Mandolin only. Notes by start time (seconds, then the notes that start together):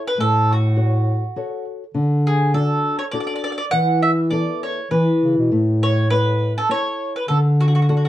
0.07 B4
0.20 A4
0.53 F#4
2.27 G#4
2.54 A4
2.99 C#5
3.11 D5
3.20 D5
3.27 D5
3.36 D5
3.44 D5
3.52 D5
3.58 D5
3.71 F#5
4.02 E5
4.30 D5
4.63 C#5
4.91 B4
5.83 C#5
6.10 B4
6.58 A4
6.71 C#5
7.16 B4
7.28 A4
7.61 F#4
7.68 F#4
7.75 F#4
7.82 F#4
7.89 F#4
7.97 F#4
8.05 F#4